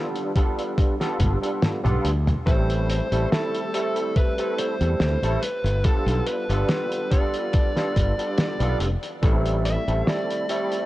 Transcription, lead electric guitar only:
2.47 C5
3.32 A4
4.17 B4
4.59 C5
5.43 B4
5.86 A4
6.28 B4
7.12 D5
9.66 E5
10.08 D5

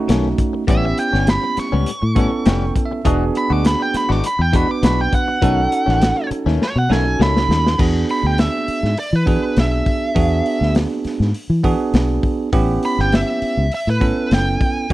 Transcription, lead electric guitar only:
0.70 E5
0.85 E5
1.00 G5
1.30 B5
1.60 C#6
3.38 B5
3.52 D6
3.67 B5
3.82 G5
3.97 B5
4.12 D6
4.27 B5
4.42 G5
4.56 B5
4.71 D6
4.85 B5
5.01 G5
5.15 F#5
6.63 C#5
6.78 F#5
6.93 G#5
7.22 B5
8.11 B5
8.27 G5
8.40 E5
8.99 D5
9.16 B4
9.60 E5
12.86 B5
13.01 G5
13.15 E5
13.75 E5
13.90 B4
14.34 G5

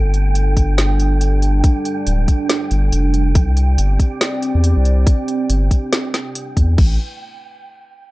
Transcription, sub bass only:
Already playing: G1
2.07 D1
2.71 G1
2.92 F1
3.35 C2
3.78 G1
4.55 E2
4.76 C2
5.50 G1
6.57 E2
6.78 A1

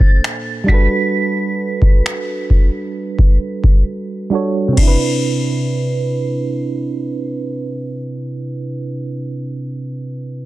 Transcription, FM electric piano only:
Already playing: A#2 A#3 D4 A4 C5
0.64 G3 D4
0.69 F#4 A4
0.74 B4
4.30 G3 D4 F#4 A4
4.35 C#5
4.68 C3
4.73 C4
4.78 D4
4.83 E4
4.87 B4

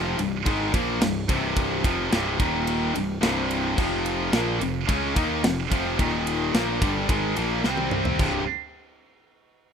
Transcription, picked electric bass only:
Already playing: F1
0.18 C1
0.47 G#1
0.74 A#1
1.01 C1
1.29 C1
1.84 F1
2.11 C1
2.40 D#1
2.95 C1
3.23 C1
3.78 F1
4.33 A#1
4.60 F1
4.89 C#2
5.16 D#2
5.43 F1
5.72 F1
6.00 D#1
6.54 A#1
6.82 G1
7.09 G#1
7.37 A#1
7.64 C2
8.19 C1

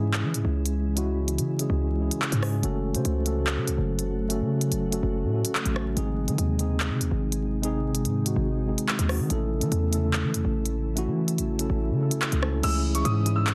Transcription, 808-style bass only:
Already playing: G#2
0.24 E3
0.34 G#2
0.45 C#2
1.38 C#3
1.70 C#2
2.32 G#2
2.63 F#1
2.95 C#3
3.05 C#2
3.57 C#3
3.68 C#2
3.78 F#1
4.40 C#3
4.72 F#1
5.03 F#1
5.24 A2
5.65 A1
5.97 G#1
6.28 D#3
6.38 D#2
6.90 C3
7.01 D#2
7.11 G#1
8.05 G#2
8.36 G#1
8.99 D#2
9.20 D#3
9.30 A1
9.61 E3
9.72 E2
10.24 E3
10.34 E2
10.45 A1
11.07 E3
11.38 A1
11.70 A1
11.91 C#3
12.32 C#2
12.63 C#2
13.05 G#2

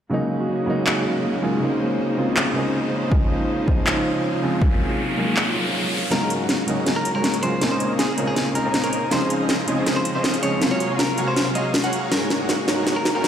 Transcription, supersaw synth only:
6.12 G#3 F#4 A#4 C#5 G#5
6.40 G#3 F#4 A#4 C#5 F#5
6.68 G#3 F#4 A#4 C#5 A#5
6.87 G#3 F#4 A#4 C#5 G#5
7.15 G#3 F#4 A#4 C#5 G#5
7.43 G#3 F#4 A#4 C#5 G#5
7.62 A#3 A#4 C5 C#5 D#5 G#5
7.90 A#3 A#4 C5 C#5 D#5 F5
8.18 A#3 A#4 C5 C#5 D#5 A#5
8.37 A#3 A#4 C5 C#5 D#5 G#5
8.65 A#3 A#4 C5 C#5 D#5 G#5
8.93 A#3 A#4 C5 C#5 D#5 G#5
9.11 C#4 G#4 C5 D#5 F5
9.40 C#4 G#4 C5 D#5 F5
9.68 C#4 G#4 C5 D#5 G#5
9.86 C#4 G#4 C5 D#5 F5
10.15 C#4 G#4 C5 D#5 F5
10.43 C#4 G#4 C5 D#5 F5
10.62 F#4 C#5 F5 G#5 A#5 C6
10.90 F#4 C#5 F5 G#5 A#5 C6
11.18 F#4 C#5 F5 G#5 A#5 C#6
11.37 F#4 C#5 F5 G#5 A#5 C6
11.55 F#4 C#5 F5 G#5 A#5 C6
11.84 F#4 C#5 F5 G#5 A#5 C6
11.93 F#4 C#5 F5 G#5 A#5 C#6
12.12 G#3 F#4 A#4 C#5 G#5
12.40 G#3 F#4 A#4 C#5 F#5
12.68 G#3 F#4 A#4 C#5 A#5
12.87 G#3 F#4 A#4 C#5 G#5
13.15 G#3 F#4 A#4 C#5 G#5

